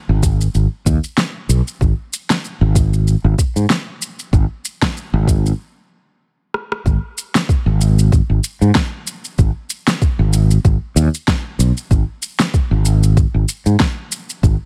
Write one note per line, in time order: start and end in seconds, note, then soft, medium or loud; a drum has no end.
0.09 0.47 G#1 medium
0.23 kick loud
0.23 shaker medium
0.41 shaker soft
0.55 0.66 G#1 medium
0.55 shaker soft
0.86 0.97 D#2 loud
0.86 kick medium
0.86 shaker medium
1.04 shaker soft
1.18 snare medium
1.18 shaker soft
1.49 1.60 B1 medium
1.49 shaker medium
1.68 shaker soft
1.81 1.92 G#1 medium
1.81 kick loud
1.81 shaker soft
2.13 shaker medium
2.30 snare medium
2.30 shaker soft
2.45 shaker soft
2.61 3.14 G#1 loud
2.75 kick loud
2.75 shaker medium
2.93 shaker soft
3.07 shaker soft
3.24 3.33 G#1 loud
3.38 kick medium
3.38 shaker medium
3.56 3.65 G#2 medium
3.56 shaker soft
3.70 snare medium
3.70 shaker soft
4.02 shaker medium
4.19 shaker soft
4.33 4.44 G#1 medium
4.33 kick loud
4.33 shaker soft
4.65 shaker medium
4.82 kick medium
4.82 snare medium
4.82 shaker soft
4.97 shaker soft
5.14 5.51 G#1 loud
5.28 kick loud
5.28 shaker medium
5.46 shaker soft
6.54 cross-stick medium
6.72 cross-stick medium
6.86 6.97 G#1 medium
6.86 kick loud
6.86 shaker soft
7.18 shaker medium
7.35 snare medium
7.35 shaker soft
7.49 kick loud
7.49 shaker soft
7.66 8.20 G#1 loud
7.81 shaker medium
7.99 shaker soft
8.12 kick loud
8.12 shaker soft
8.30 8.39 G#1 medium
8.44 shaker medium
8.61 8.70 G#2 medium
8.61 shaker soft
8.75 kick loud
8.75 snare medium
8.75 shaker soft
9.07 shaker medium
9.25 shaker soft
9.38 9.50 G#1 medium
9.38 kick loud
9.38 shaker soft
9.70 shaker medium
9.88 snare medium
9.88 shaker soft
10.02 kick loud
10.02 shaker soft
10.19 10.57 G#1 loud
10.33 shaker medium
10.51 shaker soft
10.65 10.76 G#1 medium
10.65 kick loud
10.65 shaker soft
10.96 11.08 D#2 loud
10.96 shaker medium
11.14 shaker soft
11.28 kick loud
11.28 snare medium
11.28 shaker soft
11.59 11.71 B1 medium
11.59 shaker medium
11.77 shaker soft
11.91 12.02 G#1 medium
11.91 kick loud
11.91 shaker soft
12.22 shaker medium
12.40 snare medium
12.40 shaker soft
12.54 kick loud
12.54 shaker soft
12.71 13.25 G#1 medium
12.85 shaker medium
13.03 shaker soft
13.17 kick loud
13.17 shaker soft
13.34 13.44 G#1 medium
13.49 shaker medium
13.66 13.75 G#2 medium
13.66 shaker soft
13.80 kick loud
13.80 snare medium
13.80 shaker soft
14.12 shaker medium
14.29 shaker soft
14.43 14.55 G#1 medium
14.43 kick loud
14.43 shaker soft